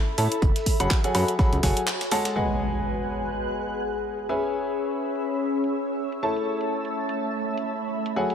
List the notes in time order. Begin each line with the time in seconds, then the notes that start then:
Already playing: A4 E5 B5
0.18 A2 E4 A4 C#5 E5 A5, closed hi-hat, open hi-hat
0.32 closed hi-hat
0.42 F#1 F#4, kick, closed hi-hat
0.56 snare, closed hi-hat
0.66 kick, closed hi-hat, open hi-hat
0.80 F#1 F#3 G#4 A4 C#5 F#5 B5, closed hi-hat
0.91 kick, snare, clap, closed hi-hat
0.99 C#5
1.04 F#3 G#4 A4 C#5 F#5 G#5, closed hi-hat
1.15 F#2 F#3 G#4 A4 C#5 F#5 B5, snare, closed hi-hat, open hi-hat
1.28 G#5, closed hi-hat
1.39 F#3 G#4 A4 C#5 F#5 B5, kick, snare, closed hi-hat
1.53 C#2, closed hi-hat
1.63 F#1 F#3 G#4 A4 C#5 F#5 G#5, kick, snare, closed hi-hat, open hi-hat
1.77 closed hi-hat
1.87 snare, clap, closed hi-hat
2.01 snare, closed hi-hat
2.12 G#3 G#4 A4 C#5 F#5 A5, snare, closed hi-hat, open hi-hat
2.25 snare, closed hi-hat
2.36 G#3 G#4 B4 D#5 F#5 G#5 F#6, impact
3.22 closed hi-hat
3.70 closed hi-hat
4.19 closed hi-hat
4.29 C#4 G#4 B4 C#5 E5 G#5 B5 E6
4.43 closed hi-hat
4.67 closed hi-hat
4.91 closed hi-hat
5.16 closed hi-hat
5.64 closed hi-hat
6.12 closed hi-hat
6.23 A3 E4 A4 C#5 E5 A5
6.37 closed hi-hat
6.44 E5
6.61 closed hi-hat
6.85 closed hi-hat
7.09 B5, closed hi-hat
7.57 closed hi-hat
8.06 closed hi-hat
8.16 F#3 A3 G#4 A4 C#5 F#5 G#5 F#6
8.30 closed hi-hat